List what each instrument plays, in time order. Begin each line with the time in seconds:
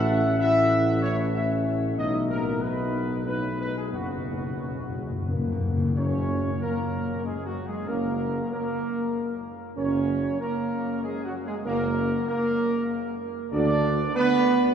Already playing: tuba A1, french horn section A3 C#4, trombone section E4, trumpet section E5
0.39 trombone section E4, trumpet section E5
1.02 trombone section C#4, trumpet section C#5
1.33 french horn section A3 C#4, trombone section E4, trumpet section E5
1.97 tuba B1, french horn section F#3 D#4, trombone section D#4, trumpet section D#5
2.29 trombone section A#3, trumpet section A#4
2.61 french horn section F#3 D#4, trombone section B3, trumpet section B4
3.26 french horn section F#3 D#4, trombone section B3, trumpet section B4
3.59 french horn section G#3, trombone section B3, trumpet section B4
3.76 trombone section G#3, trumpet section G#4
3.92 tuba F#1, timpani F#2, trombone section F#3, french horn section A#3 C#4, trumpet section F#4
4.00 timpani F#2
4.08 timpani F#2
4.17 timpani F#2
4.25 timpani F#2
4.33 timpani F#2
4.41 timpani F#2
4.48 timpani F#2
4.57 timpani F#2
4.61 timpani F#2, french horn section C#4
4.73 timpani F#2
4.81 timpani F#2
4.89 timpani F#2
4.95 timpani F#2, french horn section G#3
5.05 timpani F#2
5.12 timpani F#2
5.21 timpani F#2
5.28 timpani F#2, french horn section A#3
5.37 timpani F#2
5.44 timpani F#2
5.52 timpani F#2
5.60 timpani F#2
5.68 timpani F#2
5.77 timpani F#2
5.85 timpani F#2
5.96 tuba F#1, timpani F#2, trombone section C#4, french horn section C#4 A#4, trumpet section C#5
6.61 trombone section A#3, trumpet section A#4
7.25 trombone section G#3, trumpet section G#4
7.45 trombone section F#3, trumpet section F#4
7.67 trombone section G#3, trumpet section G#4
7.87 tuba F#1, trombone section A#3, french horn section C#4 A#4, trumpet section A#4
8.51 trombone section A#3, trumpet section A#4
9.77 tuba F#1, french horn section C#4 A#4, trombone section C#4, trumpet section C#5
10.40 trombone section A#3, trumpet section A#4
11.03 trombone section G#3, trumpet section G#4
11.24 trombone section F#3, trumpet section F#4
11.45 trombone section G#3, trumpet section G#4
11.64 tuba F#1, trombone section A#3, french horn section C#4 A#4, trumpet section A#4
12.28 trombone section A#3, trumpet section A#4
13.53 tuba D2, trombone section D4, french horn section F#4 A4, trumpet section D5
14.15 trombone section B3, trumpet section B4